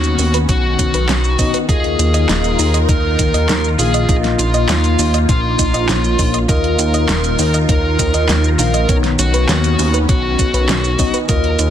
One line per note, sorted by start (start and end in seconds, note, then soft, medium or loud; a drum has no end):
0.00 0.16 D#2 medium
0.00 4.05 D#3 medium
0.00 1.35 B3 medium
0.00 1.66 B3 medium
0.00 1.66 C#4 medium
0.00 1.35 D#4 medium
0.00 0.37 F#4 medium
0.00 1.35 C#5 loud
0.00 closed hi-hat soft
0.00 shaker soft
0.19 0.46 D#2 medium
0.19 0.30 C#4 medium
0.19 open hi-hat medium
0.19 shaker medium
0.34 0.48 B4 loud
0.34 closed hi-hat medium
0.34 shaker soft
0.49 0.76 B1 loud
0.49 0.63 C#4 medium
0.49 1.57 F#4 loud
0.49 kick loud
0.49 closed hi-hat medium
0.49 shaker soft
0.79 0.93 B1 medium
0.79 0.90 C#4 medium
0.79 kick medium
0.79 closed hi-hat medium
0.79 shaker medium
0.94 1.08 B1 loud
0.94 1.08 B4 loud
0.94 closed hi-hat medium
0.94 shaker soft
1.09 1.36 B1 medium
1.09 1.23 C#4 medium
1.09 snare loud
1.09 clap loud
1.09 closed hi-hat medium
1.09 shaker soft
1.24 shaker soft
1.39 1.53 B1 loud
1.39 1.65 B3 medium
1.39 1.50 C#4 medium
1.39 1.65 D#4 medium
1.39 1.65 D#5 loud
1.39 kick medium
1.39 open hi-hat medium
1.39 shaker medium
1.54 1.68 B4 loud
1.54 closed hi-hat medium
1.54 shaker soft
1.69 1.96 D#2 loud
1.69 3.75 A#3 loud
1.69 4.06 D#4 medium
1.69 1.83 D#4 medium
1.69 8.85 F4 medium
1.69 3.75 F4 medium
1.69 2.77 G#4 loud
1.69 4.06 A#4 medium
1.69 3.75 D#5 loud
1.69 kick loud
1.69 closed hi-hat medium
1.69 shaker soft
1.84 closed hi-hat soft
1.99 2.26 D#2 medium
1.99 2.10 D#4 medium
1.99 closed hi-hat medium
1.99 shaker medium
2.14 2.28 D#5 loud
2.14 closed hi-hat medium
2.14 shaker soft
2.29 2.56 D#1 loud
2.29 2.43 D#4 medium
2.29 snare loud
2.29 clap medium
2.29 closed hi-hat medium
2.29 shaker soft
2.44 closed hi-hat soft
2.44 shaker soft
2.59 2.86 D#2 loud
2.59 2.70 D#4 medium
2.59 open hi-hat medium
2.59 shaker medium
2.74 2.88 D#5 loud
2.74 closed hi-hat medium
2.74 shaker soft
2.89 3.16 D#2 loud
2.89 3.03 D#4 medium
2.89 3.67 A#4 loud
2.89 kick loud
2.89 closed hi-hat medium
2.89 shaker soft
3.19 3.33 D#2 loud
3.19 3.30 D#4 medium
3.19 kick medium
3.19 closed hi-hat medium
3.19 shaker medium
3.34 3.48 D#2 medium
3.34 3.48 D#5 loud
3.34 closed hi-hat medium
3.34 shaker soft
3.49 3.76 D#2 loud
3.49 3.63 D#4 medium
3.49 snare loud
3.49 clap medium
3.49 closed hi-hat medium
3.49 shaker soft
3.64 shaker soft
3.79 4.06 A#1 medium
3.79 4.05 A#3 medium
3.79 3.90 D#4 medium
3.79 4.05 F4 medium
3.79 4.15 G#4 medium
3.79 4.05 F5 loud
3.79 open hi-hat medium
3.79 shaker medium
3.94 4.08 D#5 loud
3.94 closed hi-hat medium
3.94 shaker soft
4.08 4.36 A#1 medium
4.08 6.46 A#3 medium
4.08 5.86 A#3 loud
4.08 6.46 D#4 medium
4.08 4.23 D#4 medium
4.08 5.86 F4 medium
4.08 5.86 D#5 loud
4.08 kick loud
4.08 closed hi-hat medium
4.08 shaker soft
4.24 snare soft
4.24 closed hi-hat soft
4.39 4.66 A#1 medium
4.39 4.50 D#4 medium
4.39 5.17 F4 medium
4.39 closed hi-hat medium
4.39 shaker medium
4.54 4.68 D#5 loud
4.54 closed hi-hat medium
4.54 shaker soft
4.69 4.96 D#2 medium
4.69 4.83 D#4 medium
4.69 snare loud
4.69 clap medium
4.69 closed hi-hat medium
4.69 shaker soft
4.84 closed hi-hat soft
4.84 shaker soft
4.99 5.26 D#2 medium
4.99 5.10 D#4 medium
4.99 open hi-hat medium
4.99 shaker medium
5.14 5.28 D#5 loud
5.14 closed hi-hat medium
5.14 shaker soft
5.29 5.56 A#1 loud
5.29 5.43 D#4 medium
5.29 6.37 F4 loud
5.29 kick loud
5.29 closed hi-hat medium
5.29 shaker soft
5.59 5.73 A#1 medium
5.59 5.70 D#4 medium
5.59 kick medium
5.59 closed hi-hat medium
5.59 shaker medium
5.74 5.88 A#1 loud
5.74 5.88 D#5 loud
5.74 closed hi-hat medium
5.74 shaker soft
5.89 6.16 A#1 medium
5.89 6.45 A#3 medium
5.89 6.03 D#4 medium
5.89 6.45 F4 medium
5.89 6.45 C#5 loud
5.89 snare loud
5.89 clap medium
5.89 closed hi-hat medium
5.89 shaker soft
6.04 shaker soft
6.19 6.46 A#1 loud
6.19 6.30 D#4 medium
6.19 kick medium
6.19 open hi-hat medium
6.19 shaker medium
6.34 6.48 D#5 loud
6.34 closed hi-hat medium
6.34 shaker soft
6.49 6.76 D#2 loud
6.49 11.25 D#3 medium
6.49 8.55 A#3 loud
6.49 8.86 D#4 medium
6.49 6.63 D#4 medium
6.49 8.55 F4 medium
6.49 8.87 A#4 medium
6.49 7.57 A#4 loud
6.49 8.55 D#5 loud
6.49 kick loud
6.49 closed hi-hat medium
6.49 shaker soft
6.64 closed hi-hat soft
6.79 7.06 D#2 loud
6.79 6.90 D#4 medium
6.79 closed hi-hat medium
6.79 shaker medium
6.94 7.08 D#5 loud
6.94 closed hi-hat soft
6.94 shaker soft
7.09 7.36 D#1 medium
7.09 7.23 D#4 medium
7.09 snare loud
7.09 clap medium
7.09 closed hi-hat medium
7.09 shaker soft
7.24 closed hi-hat soft
7.24 shaker soft
7.39 7.66 D#2 loud
7.39 7.50 D#4 medium
7.39 open hi-hat medium
7.39 shaker medium
7.54 7.68 D#5 loud
7.54 closed hi-hat medium
7.54 shaker soft
7.69 7.96 D#2 loud
7.69 7.83 D#4 medium
7.69 8.47 A#4 loud
7.69 kick loud
7.69 closed hi-hat medium
7.69 shaker soft
7.99 8.13 D#2 loud
7.99 8.10 D#4 medium
7.99 kick medium
7.99 closed hi-hat medium
7.99 shaker medium
8.14 8.28 D#2 medium
8.14 8.28 D#5 loud
8.14 closed hi-hat medium
8.14 shaker soft
8.29 8.56 D#2 medium
8.29 8.43 D#4 medium
8.29 snare loud
8.29 clap medium
8.29 closed hi-hat medium
8.29 shaker soft
8.44 shaker soft
8.59 8.86 A#1 medium
8.59 8.85 A#3 medium
8.59 8.70 D#4 medium
8.59 8.85 F4 medium
8.59 8.95 A#4 medium
8.59 8.85 F5 loud
8.59 open hi-hat medium
8.59 shaker medium
8.74 8.88 D#5 loud
8.74 closed hi-hat medium
8.74 shaker soft
8.89 9.16 B1 medium
8.89 10.95 B3 loud
8.89 11.27 B3 medium
8.89 9.03 C#4 medium
8.89 11.27 C#4 medium
8.89 10.95 D#4 medium
8.89 10.95 C#5 loud
8.89 kick loud
8.89 closed hi-hat medium
8.89 shaker soft
9.04 snare soft
9.04 closed hi-hat soft
9.19 9.46 B1 medium
9.19 9.30 C#4 medium
9.19 9.97 F#4 medium
9.19 closed hi-hat medium
9.19 shaker medium
9.34 9.48 B4 loud
9.34 closed hi-hat medium
9.34 shaker soft
9.49 9.76 D#2 medium
9.49 9.63 C#4 medium
9.49 snare loud
9.49 clap medium
9.49 closed hi-hat medium
9.49 shaker soft
9.64 closed hi-hat soft
9.64 shaker soft
9.79 10.06 D#2 medium
9.79 9.90 C#4 medium
9.79 open hi-hat medium
9.79 shaker medium
9.94 10.08 B4 loud
9.94 closed hi-hat medium
9.94 shaker soft
10.09 10.36 B1 loud
10.09 10.23 C#4 medium
10.09 11.17 F#4 loud
10.09 kick loud
10.09 closed hi-hat medium
10.09 shaker soft
10.39 10.53 B1 medium
10.39 10.50 C#4 medium
10.39 kick medium
10.39 closed hi-hat medium
10.39 shaker medium
10.54 10.68 B1 loud
10.54 10.68 B4 loud
10.54 closed hi-hat soft
10.54 shaker soft
10.69 10.96 B1 medium
10.69 10.83 C#4 medium
10.69 snare loud
10.69 clap medium
10.69 closed hi-hat medium
10.69 shaker soft
10.84 shaker soft
10.99 11.13 B1 loud
10.99 11.25 B3 medium
10.99 11.10 C#4 medium
10.99 11.25 D#4 medium
10.99 11.25 D#5 loud
10.99 kick medium
10.99 open hi-hat medium
10.99 shaker medium
11.14 11.28 B4 loud
11.14 closed hi-hat soft
11.14 shaker soft
11.29 11.56 D#2 loud
11.29 11.70 D#3 medium
11.29 11.70 A#3 loud
11.29 11.70 D#4 medium
11.29 11.43 D#4 medium
11.29 11.70 F4 medium
11.29 11.70 A#4 loud
11.29 11.70 D#5 loud
11.29 kick loud
11.29 closed hi-hat medium
11.29 shaker soft
11.44 closed hi-hat soft
11.59 11.70 D#2 loud
11.59 11.70 D#4 medium
11.59 closed hi-hat medium
11.59 shaker medium